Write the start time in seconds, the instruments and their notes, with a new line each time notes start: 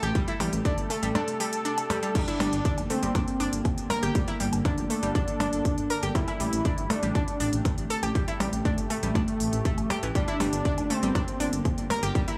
Already playing: ambient pad C3 A3 G4
0.03 detuned saw bass A1, synth pluck G4, closed hi-hat, low woodblock
0.15 synth pluck G3, kick, closed hi-hat
0.28 synth pluck E4, closed hi-hat
0.40 detuned saw bass A1, synth pluck G3, open hi-hat, percussion blips
0.53 detuned saw bass A1, closed hi-hat
0.65 synth pluck D4, analog synth lead A4, kick, closed hi-hat
0.78 detuned saw bass G1, closed hi-hat
0.90 synth pluck A3, open hi-hat, low woodblock
1.03 detuned saw bass A1, synth pluck G3, closed hi-hat
1.15 synth pluck D4, closed hi-hat, percussion blips
1.28 closed hi-hat
1.40 synth pluck G3, open hi-hat
1.53 closed hi-hat
1.65 synth pluck D4, closed hi-hat
1.78 closed hi-hat, low woodblock
1.90 synth pluck G3, open hi-hat, percussion blips
2.03 synth pluck G3, closed hi-hat
2.15 ambient pad D3 A#3, synth pluck G3, analog synth lead D4, kick, closed hi-hat, crash
2.28 synth pluck E4, closed hi-hat
2.40 detuned saw bass G1, synth pluck G3, open hi-hat, percussion blips
2.53 detuned saw bass G1, closed hi-hat
2.65 synth pluck D4, kick, closed hi-hat
2.78 detuned saw bass F1, closed hi-hat, low woodblock
2.90 synth pluck A3, analog synth lead C4, open hi-hat
3.03 detuned saw bass G1, synth pluck G3, closed hi-hat
3.15 synth pluck D4, kick, closed hi-hat, percussion blips
3.28 closed hi-hat
3.40 detuned saw bass G1, synth pluck D4, open hi-hat
3.53 detuned saw bass G1, closed hi-hat
3.65 kick, closed hi-hat, low woodblock
3.78 detuned saw bass G1, closed hi-hat
3.90 synth pluck A#4, open hi-hat, percussion blips
4.03 detuned saw bass G1, synth pluck G4, closed hi-hat
4.15 synth pluck G3, ambient pad A4, kick, closed hi-hat
4.28 synth pluck E4, closed hi-hat
4.40 detuned saw bass G1, synth pluck G3, open hi-hat
4.53 detuned saw bass G1, closed hi-hat, low woodblock
4.65 synth pluck D4, analog synth lead D4, kick, closed hi-hat, percussion blips
4.78 detuned saw bass F1, closed hi-hat
4.90 synth pluck A3, open hi-hat
5.03 detuned saw bass G1, synth pluck G3, closed hi-hat
5.15 synth pluck D4, kick, closed hi-hat
5.28 closed hi-hat
5.40 detuned saw bass G1, synth pluck D4, open hi-hat, percussion blips, low woodblock
5.53 detuned saw bass G1, closed hi-hat
5.65 kick, closed hi-hat
5.78 detuned saw bass G1, closed hi-hat
5.90 synth pluck A#4, open hi-hat
6.03 detuned saw bass G1, synth pluck G4, closed hi-hat
6.15 ambient pad C3 A3 G4, synth pluck G3, analog synth lead E4, kick, closed hi-hat, percussion blips
6.28 synth pluck E4, closed hi-hat, low woodblock
6.40 detuned saw bass A1, synth pluck G3, open hi-hat
6.53 detuned saw bass A1, closed hi-hat
6.65 synth pluck D4, kick, closed hi-hat
6.78 detuned saw bass G1, closed hi-hat
6.90 synth pluck A3, analog synth lead D4, open hi-hat, percussion blips
7.03 detuned saw bass A1, synth pluck G3, closed hi-hat
7.15 synth pluck D4, kick, closed hi-hat, low woodblock
7.28 closed hi-hat
7.40 detuned saw bass A1, synth pluck D4, open hi-hat
7.53 detuned saw bass A1, closed hi-hat
7.65 kick, closed hi-hat, percussion blips
7.78 detuned saw bass A1, closed hi-hat
7.90 synth pluck A4, open hi-hat
8.03 detuned saw bass A1, synth pluck G4, closed hi-hat, low woodblock
8.15 synth pluck G3, kick, closed hi-hat
8.28 synth pluck E4, closed hi-hat
8.40 detuned saw bass A1, synth pluck G3, open hi-hat, percussion blips
8.53 detuned saw bass A1, closed hi-hat
8.65 analog synth lead A3, synth pluck D4, kick, closed hi-hat
8.78 detuned saw bass G1, closed hi-hat
8.90 synth pluck A3, open hi-hat, low woodblock
9.03 detuned saw bass A1, synth pluck G3, closed hi-hat
9.15 synth pluck D4, kick, closed hi-hat, percussion blips
9.28 closed hi-hat
9.40 detuned saw bass A1, open hi-hat
9.53 detuned saw bass A1, closed hi-hat
9.65 synth pluck A3, kick, closed hi-hat
9.78 detuned saw bass A1, closed hi-hat, low woodblock
9.90 synth pluck G4, open hi-hat, percussion blips
10.03 detuned saw bass A1, synth pluck E3, closed hi-hat
10.15 ambient pad D3 A#3, synth pluck G3, analog synth lead D4, kick, closed hi-hat
10.28 synth pluck E4, closed hi-hat
10.40 detuned saw bass G1, synth pluck G3, open hi-hat, percussion blips
10.53 detuned saw bass G1, closed hi-hat
10.65 synth pluck D4, kick, closed hi-hat
10.78 detuned saw bass F1, closed hi-hat, low woodblock
10.90 synth pluck A3, analog synth lead C4, open hi-hat
11.03 detuned saw bass G1, synth pluck G3, closed hi-hat
11.15 synth pluck D4, kick, closed hi-hat, percussion blips
11.28 closed hi-hat
11.40 detuned saw bass G1, synth pluck D4, open hi-hat
11.53 detuned saw bass G1, closed hi-hat
11.65 kick, closed hi-hat, low woodblock
11.78 detuned saw bass G1, closed hi-hat
11.90 synth pluck A#4, open hi-hat, percussion blips
12.03 detuned saw bass G1, synth pluck G4, closed hi-hat
12.15 synth pluck G3, kick, closed hi-hat
12.28 synth pluck E4, closed hi-hat